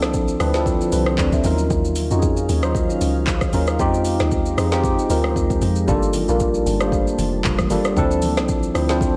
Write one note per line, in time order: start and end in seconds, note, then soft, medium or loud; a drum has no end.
0.00 0.39 C2 medium
0.00 1.43 D3 medium
0.00 0.25 F3 loud
0.00 1.41 F3 medium
0.00 0.26 C4 loud
0.00 1.43 C4 medium
0.00 0.26 D4 loud
0.00 0.26 E4 loud
0.00 1.43 E4 medium
0.00 0.26 A4 loud
0.00 cross-stick loud
0.00 snare medium
0.00 shaker soft
0.14 kick medium
0.14 shaker medium
0.28 shaker medium
0.39 0.79 D2 loud
0.39 0.51 F3 medium
0.39 0.52 C4 medium
0.39 0.52 D4 medium
0.39 0.52 E4 medium
0.39 0.52 B4 medium
0.39 cross-stick loud
0.39 open hi-hat soft
0.39 shaker medium
0.54 0.85 F3 medium
0.54 0.85 C4 medium
0.54 0.85 D4 medium
0.54 0.67 E4 medium
0.54 0.67 A4 loud
0.54 snare medium
0.54 shaker medium
0.66 kick loud
0.66 shaker medium
0.81 0.92 F4 medium
0.81 0.92 A4 medium
0.81 shaker medium
0.92 1.18 C2 loud
0.92 1.06 G4 medium
0.92 1.06 B4 medium
0.92 open hi-hat medium
0.92 shaker loud
1.06 1.18 A4 medium
1.06 1.18 C5 medium
1.06 cross-stick loud
1.18 1.44 D2 loud
1.18 1.33 B4 medium
1.18 1.32 D5 medium
1.18 kick loud
1.18 clap loud
1.18 shaker medium
1.33 1.58 C5 medium
1.33 1.58 E5 medium
1.33 kick loud
1.33 shaker medium
1.44 1.70 D#2 loud
1.44 3.77 D#3 medium
1.44 1.97 F#3 medium
1.44 3.77 C#4 medium
1.44 1.97 C#4 medium
1.44 3.77 D#4 medium
1.44 1.97 D#4 medium
1.44 1.97 F4 medium
1.44 1.97 A#4 loud
1.44 3.77 F5 medium
1.44 open hi-hat soft
1.44 shaker medium
1.58 shaker medium
1.70 2.10 D#2 loud
1.70 kick loud
1.70 shaker medium
1.85 shaker medium
1.96 open hi-hat medium
1.96 shaker loud
2.11 2.48 F2 medium
2.11 2.52 C#4 medium
2.11 2.52 D#4 medium
2.11 2.52 F4 medium
2.11 2.17 F#4 medium
2.11 shaker medium
2.19 2.56 G#4 medium
2.19 kick medium
2.19 shaker medium
2.37 shaker medium
2.49 2.88 D#2 loud
2.49 open hi-hat soft
2.49 shaker medium
2.63 3.36 F#3 medium
2.63 3.36 C#4 medium
2.63 3.36 D#4 medium
2.63 3.36 F4 medium
2.63 3.37 C5 medium
2.63 cross-stick loud
2.63 shaker medium
2.75 kick loud
2.75 shaker medium
2.90 shaker medium
3.01 3.52 C#2 medium
3.01 open hi-hat medium
3.01 shaker loud
3.27 kick loud
3.27 clap loud
3.27 shaker medium
3.41 kick loud
3.41 cross-stick loud
3.41 shaker medium
3.53 3.79 D#2 loud
3.53 3.75 F#3 medium
3.53 3.75 C#4 medium
3.53 3.75 D#4 medium
3.53 3.75 F4 medium
3.53 3.75 A#4 medium
3.53 open hi-hat soft
3.53 shaker medium
3.67 cross-stick medium
3.67 shaker medium
3.79 4.19 F2 loud
3.79 5.86 F3 medium
3.79 4.43 G#3 loud
3.79 5.86 G#3 loud
3.79 4.43 C4 loud
3.79 5.86 D#4 medium
3.79 4.43 D#4 loud
3.79 4.43 F4 loud
3.79 5.86 G4 medium
3.79 4.44 G4 loud
3.79 kick loud
3.79 shaker medium
3.94 shaker soft
4.05 open hi-hat medium
4.05 shaker loud
4.20 4.57 D#2 medium
4.20 cross-stick loud
4.20 snare medium
4.20 shaker medium
4.31 kick loud
4.31 shaker medium
4.46 shaker medium
4.57 4.97 F2 medium
4.57 4.69 G#3 medium
4.57 4.69 C4 medium
4.57 4.69 D#4 medium
4.57 4.70 F4 medium
4.57 4.70 G#4 medium
4.57 cross-stick loud
4.57 open hi-hat soft
4.57 shaker medium
4.71 5.02 G#3 medium
4.71 5.03 C4 medium
4.71 5.03 D#4 medium
4.71 5.03 F4 medium
4.71 5.03 G4 loud
4.71 snare medium
4.71 shaker medium
4.84 kick loud
4.84 shaker medium
4.99 shaker medium
5.09 5.35 D2 loud
5.09 5.73 G#3 medium
5.09 5.73 C4 medium
5.09 5.74 D#4 medium
5.09 5.74 F4 medium
5.09 5.74 A#4 loud
5.09 open hi-hat medium
5.09 shaker loud
5.24 cross-stick loud
5.36 5.61 D#2 loud
5.36 kick loud
5.36 shaker medium
5.50 kick loud
5.50 shaker medium
5.62 5.87 F2 loud
5.62 open hi-hat soft
5.62 shaker medium
5.76 shaker medium
5.87 6.27 G1 loud
5.87 6.19 G3 loud
5.87 7.95 G3 medium
5.87 6.20 A#3 loud
5.87 7.95 A#3 medium
5.87 6.20 D4 loud
5.87 6.20 F4 loud
5.87 6.20 A4 loud
5.87 7.95 A5 medium
5.87 kick loud
5.87 low conga medium
5.87 shaker medium
6.03 shaker soft
6.13 open hi-hat medium
6.13 high conga medium
6.13 shaker loud
6.28 6.65 A#1 medium
6.28 6.69 G3 medium
6.28 6.69 A#3 medium
6.28 6.69 D4 medium
6.28 6.70 F4 medium
6.28 6.70 A#4 medium
6.28 shaker medium
6.40 kick loud
6.40 shaker medium
6.54 shaker medium
6.66 7.05 G1 loud
6.66 open hi-hat soft
6.66 shaker medium
6.80 7.53 G3 medium
6.80 6.86 A3 medium
6.80 7.53 D4 medium
6.80 7.54 F4 medium
6.80 7.54 C5 medium
6.80 cross-stick loud
6.80 shaker medium
6.87 7.56 A#3 medium
6.92 kick loud
6.92 shaker medium
7.07 shaker medium
7.18 7.72 F1 medium
7.18 open hi-hat medium
7.18 high conga medium
7.18 shaker loud
7.33 high conga soft
7.44 kick loud
7.44 clap loud
7.44 low conga medium
7.44 shaker medium
7.59 kick loud
7.59 cross-stick loud
7.59 high conga medium
7.59 shaker medium
7.70 7.96 G1 medium
7.70 7.92 G3 medium
7.70 7.92 A#3 medium
7.70 7.92 D4 medium
7.70 7.92 F4 medium
7.70 7.93 A4 medium
7.70 open hi-hat soft
7.70 high conga medium
7.70 shaker medium
7.84 cross-stick loud
7.84 shaker medium
7.96 8.39 D2 loud
7.96 9.17 D3 medium
7.96 8.60 F3 loud
7.96 9.17 C4 medium
7.96 8.60 C4 medium
7.96 8.61 D4 medium
7.96 9.17 E4 medium
7.96 8.61 E4 loud
7.96 8.61 A4 loud
7.96 kick loud
7.96 low conga medium
7.96 shaker medium
8.11 shaker medium
8.22 open hi-hat medium
8.22 high conga medium
8.22 shaker loud
8.37 8.74 C2 loud
8.37 cross-stick loud
8.37 snare medium
8.37 shaker medium
8.48 kick medium
8.48 shaker medium
8.63 shaker medium
8.74 9.14 D2 loud
8.74 8.86 F3 medium
8.74 8.86 C4 medium
8.74 8.87 D4 medium
8.74 8.87 E4 medium
8.74 8.87 C5 medium
8.74 cross-stick loud
8.74 open hi-hat soft
8.74 shaker medium
8.89 9.17 F3 medium
8.89 9.17 C4 medium
8.89 9.17 D4 medium
8.89 9.17 E4 medium
8.89 9.17 C5 loud
8.89 snare medium
8.89 shaker medium
9.01 kick loud
9.01 shaker medium